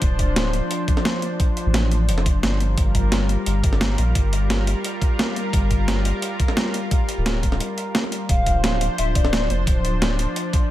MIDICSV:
0, 0, Header, 1, 5, 480
1, 0, Start_track
1, 0, Key_signature, -1, "minor"
1, 0, Tempo, 344828
1, 26, Time_signature, 4, 2, 24, 8
1, 14904, End_track
2, 0, Start_track
2, 0, Title_t, "Soft synth lead"
2, 0, Program_c, 0, 80
2, 11540, Note_on_c, 0, 77, 122
2, 11989, Note_off_c, 0, 77, 0
2, 12023, Note_on_c, 0, 77, 107
2, 12471, Note_off_c, 0, 77, 0
2, 12502, Note_on_c, 0, 76, 107
2, 12611, Note_off_c, 0, 76, 0
2, 12742, Note_on_c, 0, 74, 101
2, 13226, Note_on_c, 0, 72, 85
2, 13247, Note_off_c, 0, 74, 0
2, 13946, Note_off_c, 0, 72, 0
2, 14904, End_track
3, 0, Start_track
3, 0, Title_t, "Analog synth pad"
3, 0, Program_c, 1, 89
3, 0, Note_on_c, 1, 53, 81
3, 0, Note_on_c, 1, 62, 72
3, 0, Note_on_c, 1, 72, 91
3, 3569, Note_off_c, 1, 53, 0
3, 3570, Note_off_c, 1, 62, 0
3, 3570, Note_off_c, 1, 72, 0
3, 3617, Note_on_c, 1, 65, 73
3, 3618, Note_on_c, 1, 55, 80
3, 3619, Note_on_c, 1, 70, 88
3, 11486, Note_off_c, 1, 55, 0
3, 11486, Note_off_c, 1, 65, 0
3, 11487, Note_off_c, 1, 70, 0
3, 11545, Note_on_c, 1, 53, 82
3, 11546, Note_on_c, 1, 62, 75
3, 11547, Note_on_c, 1, 72, 91
3, 14904, Note_off_c, 1, 53, 0
3, 14904, Note_off_c, 1, 62, 0
3, 14904, Note_off_c, 1, 72, 0
3, 14904, End_track
4, 0, Start_track
4, 0, Title_t, "Sub bass"
4, 0, Program_c, 2, 38
4, 23, Note_on_c, 2, 26, 94
4, 848, Note_off_c, 2, 26, 0
4, 2310, Note_on_c, 2, 33, 95
4, 2906, Note_on_c, 2, 29, 97
4, 2927, Note_off_c, 2, 33, 0
4, 3386, Note_on_c, 2, 31, 102
4, 3407, Note_off_c, 2, 29, 0
4, 3847, Note_off_c, 2, 31, 0
4, 3865, Note_on_c, 2, 31, 96
4, 4689, Note_off_c, 2, 31, 0
4, 4822, Note_on_c, 2, 31, 77
4, 5041, Note_off_c, 2, 31, 0
4, 5061, Note_on_c, 2, 31, 85
4, 5525, Note_off_c, 2, 31, 0
4, 5542, Note_on_c, 2, 34, 94
4, 5761, Note_off_c, 2, 34, 0
4, 5782, Note_on_c, 2, 31, 98
4, 6608, Note_off_c, 2, 31, 0
4, 7701, Note_on_c, 2, 31, 96
4, 8527, Note_off_c, 2, 31, 0
4, 9990, Note_on_c, 2, 26, 96
4, 10586, Note_off_c, 2, 26, 0
4, 11542, Note_on_c, 2, 26, 96
4, 12368, Note_off_c, 2, 26, 0
4, 12505, Note_on_c, 2, 26, 80
4, 12722, Note_off_c, 2, 26, 0
4, 12742, Note_on_c, 2, 26, 84
4, 13205, Note_off_c, 2, 26, 0
4, 13224, Note_on_c, 2, 29, 94
4, 13442, Note_off_c, 2, 29, 0
4, 13463, Note_on_c, 2, 26, 94
4, 14288, Note_off_c, 2, 26, 0
4, 14904, End_track
5, 0, Start_track
5, 0, Title_t, "Drums"
5, 23, Note_on_c, 9, 36, 121
5, 23, Note_on_c, 9, 42, 89
5, 162, Note_off_c, 9, 36, 0
5, 163, Note_off_c, 9, 42, 0
5, 264, Note_on_c, 9, 36, 62
5, 266, Note_on_c, 9, 42, 59
5, 403, Note_off_c, 9, 36, 0
5, 405, Note_off_c, 9, 42, 0
5, 505, Note_on_c, 9, 38, 116
5, 505, Note_on_c, 9, 42, 84
5, 645, Note_off_c, 9, 38, 0
5, 645, Note_off_c, 9, 42, 0
5, 744, Note_on_c, 9, 42, 58
5, 883, Note_off_c, 9, 42, 0
5, 984, Note_on_c, 9, 42, 88
5, 1123, Note_off_c, 9, 42, 0
5, 1225, Note_on_c, 9, 36, 108
5, 1225, Note_on_c, 9, 42, 59
5, 1350, Note_on_c, 9, 40, 56
5, 1364, Note_off_c, 9, 36, 0
5, 1364, Note_off_c, 9, 42, 0
5, 1465, Note_on_c, 9, 38, 117
5, 1465, Note_on_c, 9, 42, 85
5, 1489, Note_off_c, 9, 40, 0
5, 1604, Note_off_c, 9, 38, 0
5, 1604, Note_off_c, 9, 42, 0
5, 1703, Note_on_c, 9, 42, 62
5, 1842, Note_off_c, 9, 42, 0
5, 1945, Note_on_c, 9, 36, 114
5, 1946, Note_on_c, 9, 42, 87
5, 2084, Note_off_c, 9, 36, 0
5, 2085, Note_off_c, 9, 42, 0
5, 2184, Note_on_c, 9, 42, 60
5, 2323, Note_off_c, 9, 42, 0
5, 2423, Note_on_c, 9, 38, 109
5, 2423, Note_on_c, 9, 42, 80
5, 2563, Note_off_c, 9, 38, 0
5, 2563, Note_off_c, 9, 42, 0
5, 2666, Note_on_c, 9, 42, 58
5, 2805, Note_off_c, 9, 42, 0
5, 2904, Note_on_c, 9, 42, 85
5, 3030, Note_on_c, 9, 40, 51
5, 3043, Note_off_c, 9, 42, 0
5, 3145, Note_on_c, 9, 36, 105
5, 3148, Note_on_c, 9, 42, 59
5, 3169, Note_off_c, 9, 40, 0
5, 3284, Note_off_c, 9, 36, 0
5, 3287, Note_off_c, 9, 42, 0
5, 3386, Note_on_c, 9, 38, 117
5, 3386, Note_on_c, 9, 42, 83
5, 3525, Note_off_c, 9, 38, 0
5, 3525, Note_off_c, 9, 42, 0
5, 3625, Note_on_c, 9, 42, 59
5, 3765, Note_off_c, 9, 42, 0
5, 3863, Note_on_c, 9, 42, 85
5, 3864, Note_on_c, 9, 36, 112
5, 4003, Note_off_c, 9, 36, 0
5, 4003, Note_off_c, 9, 42, 0
5, 4103, Note_on_c, 9, 36, 57
5, 4103, Note_on_c, 9, 42, 61
5, 4242, Note_off_c, 9, 42, 0
5, 4243, Note_off_c, 9, 36, 0
5, 4341, Note_on_c, 9, 38, 111
5, 4341, Note_on_c, 9, 42, 82
5, 4481, Note_off_c, 9, 38, 0
5, 4481, Note_off_c, 9, 42, 0
5, 4584, Note_on_c, 9, 42, 57
5, 4723, Note_off_c, 9, 42, 0
5, 4822, Note_on_c, 9, 42, 88
5, 4961, Note_off_c, 9, 42, 0
5, 5061, Note_on_c, 9, 36, 102
5, 5063, Note_on_c, 9, 42, 59
5, 5186, Note_on_c, 9, 40, 51
5, 5200, Note_off_c, 9, 36, 0
5, 5202, Note_off_c, 9, 42, 0
5, 5302, Note_on_c, 9, 38, 115
5, 5302, Note_on_c, 9, 42, 86
5, 5325, Note_off_c, 9, 40, 0
5, 5441, Note_off_c, 9, 38, 0
5, 5441, Note_off_c, 9, 42, 0
5, 5543, Note_on_c, 9, 42, 61
5, 5682, Note_off_c, 9, 42, 0
5, 5781, Note_on_c, 9, 36, 110
5, 5783, Note_on_c, 9, 42, 91
5, 5920, Note_off_c, 9, 36, 0
5, 5922, Note_off_c, 9, 42, 0
5, 6025, Note_on_c, 9, 42, 61
5, 6164, Note_off_c, 9, 42, 0
5, 6265, Note_on_c, 9, 38, 108
5, 6265, Note_on_c, 9, 42, 83
5, 6404, Note_off_c, 9, 38, 0
5, 6404, Note_off_c, 9, 42, 0
5, 6505, Note_on_c, 9, 42, 61
5, 6644, Note_off_c, 9, 42, 0
5, 6744, Note_on_c, 9, 42, 90
5, 6883, Note_off_c, 9, 42, 0
5, 6982, Note_on_c, 9, 36, 101
5, 6986, Note_on_c, 9, 42, 62
5, 7121, Note_off_c, 9, 36, 0
5, 7125, Note_off_c, 9, 42, 0
5, 7228, Note_on_c, 9, 38, 108
5, 7228, Note_on_c, 9, 42, 88
5, 7367, Note_off_c, 9, 38, 0
5, 7367, Note_off_c, 9, 42, 0
5, 7467, Note_on_c, 9, 42, 64
5, 7606, Note_off_c, 9, 42, 0
5, 7702, Note_on_c, 9, 36, 106
5, 7706, Note_on_c, 9, 42, 92
5, 7841, Note_off_c, 9, 36, 0
5, 7845, Note_off_c, 9, 42, 0
5, 7942, Note_on_c, 9, 36, 55
5, 7944, Note_on_c, 9, 42, 63
5, 8081, Note_off_c, 9, 36, 0
5, 8083, Note_off_c, 9, 42, 0
5, 8185, Note_on_c, 9, 38, 105
5, 8185, Note_on_c, 9, 42, 90
5, 8324, Note_off_c, 9, 38, 0
5, 8324, Note_off_c, 9, 42, 0
5, 8424, Note_on_c, 9, 42, 63
5, 8563, Note_off_c, 9, 42, 0
5, 8663, Note_on_c, 9, 42, 93
5, 8802, Note_off_c, 9, 42, 0
5, 8903, Note_on_c, 9, 36, 98
5, 8904, Note_on_c, 9, 42, 65
5, 9026, Note_on_c, 9, 40, 52
5, 9043, Note_off_c, 9, 36, 0
5, 9043, Note_off_c, 9, 42, 0
5, 9143, Note_on_c, 9, 38, 108
5, 9143, Note_on_c, 9, 42, 91
5, 9165, Note_off_c, 9, 40, 0
5, 9283, Note_off_c, 9, 38, 0
5, 9283, Note_off_c, 9, 42, 0
5, 9383, Note_on_c, 9, 42, 69
5, 9523, Note_off_c, 9, 42, 0
5, 9623, Note_on_c, 9, 42, 95
5, 9624, Note_on_c, 9, 36, 110
5, 9762, Note_off_c, 9, 42, 0
5, 9763, Note_off_c, 9, 36, 0
5, 9863, Note_on_c, 9, 42, 67
5, 10003, Note_off_c, 9, 42, 0
5, 10105, Note_on_c, 9, 38, 105
5, 10105, Note_on_c, 9, 42, 92
5, 10244, Note_off_c, 9, 38, 0
5, 10244, Note_off_c, 9, 42, 0
5, 10343, Note_on_c, 9, 36, 58
5, 10345, Note_on_c, 9, 42, 66
5, 10468, Note_on_c, 9, 40, 54
5, 10482, Note_off_c, 9, 36, 0
5, 10484, Note_off_c, 9, 42, 0
5, 10586, Note_on_c, 9, 42, 94
5, 10608, Note_off_c, 9, 40, 0
5, 10725, Note_off_c, 9, 42, 0
5, 10825, Note_on_c, 9, 42, 65
5, 10964, Note_off_c, 9, 42, 0
5, 11064, Note_on_c, 9, 38, 112
5, 11064, Note_on_c, 9, 42, 91
5, 11187, Note_on_c, 9, 40, 32
5, 11203, Note_off_c, 9, 38, 0
5, 11203, Note_off_c, 9, 42, 0
5, 11304, Note_on_c, 9, 42, 69
5, 11326, Note_off_c, 9, 40, 0
5, 11443, Note_off_c, 9, 42, 0
5, 11543, Note_on_c, 9, 36, 113
5, 11544, Note_on_c, 9, 42, 94
5, 11682, Note_off_c, 9, 36, 0
5, 11683, Note_off_c, 9, 42, 0
5, 11782, Note_on_c, 9, 36, 58
5, 11783, Note_on_c, 9, 42, 65
5, 11922, Note_off_c, 9, 36, 0
5, 11922, Note_off_c, 9, 42, 0
5, 12023, Note_on_c, 9, 38, 108
5, 12023, Note_on_c, 9, 42, 89
5, 12162, Note_off_c, 9, 38, 0
5, 12162, Note_off_c, 9, 42, 0
5, 12264, Note_on_c, 9, 42, 67
5, 12403, Note_off_c, 9, 42, 0
5, 12506, Note_on_c, 9, 42, 98
5, 12645, Note_off_c, 9, 42, 0
5, 12742, Note_on_c, 9, 36, 103
5, 12743, Note_on_c, 9, 42, 65
5, 12869, Note_on_c, 9, 40, 56
5, 12882, Note_off_c, 9, 36, 0
5, 12882, Note_off_c, 9, 42, 0
5, 12986, Note_on_c, 9, 38, 116
5, 12986, Note_on_c, 9, 42, 93
5, 13008, Note_off_c, 9, 40, 0
5, 13125, Note_off_c, 9, 38, 0
5, 13125, Note_off_c, 9, 42, 0
5, 13226, Note_on_c, 9, 42, 68
5, 13365, Note_off_c, 9, 42, 0
5, 13462, Note_on_c, 9, 36, 118
5, 13465, Note_on_c, 9, 42, 92
5, 13601, Note_off_c, 9, 36, 0
5, 13604, Note_off_c, 9, 42, 0
5, 13706, Note_on_c, 9, 42, 63
5, 13845, Note_off_c, 9, 42, 0
5, 13946, Note_on_c, 9, 38, 117
5, 13946, Note_on_c, 9, 42, 90
5, 14085, Note_off_c, 9, 38, 0
5, 14085, Note_off_c, 9, 42, 0
5, 14185, Note_on_c, 9, 42, 65
5, 14324, Note_off_c, 9, 42, 0
5, 14424, Note_on_c, 9, 42, 94
5, 14564, Note_off_c, 9, 42, 0
5, 14663, Note_on_c, 9, 36, 106
5, 14666, Note_on_c, 9, 42, 66
5, 14803, Note_off_c, 9, 36, 0
5, 14805, Note_off_c, 9, 42, 0
5, 14904, End_track
0, 0, End_of_file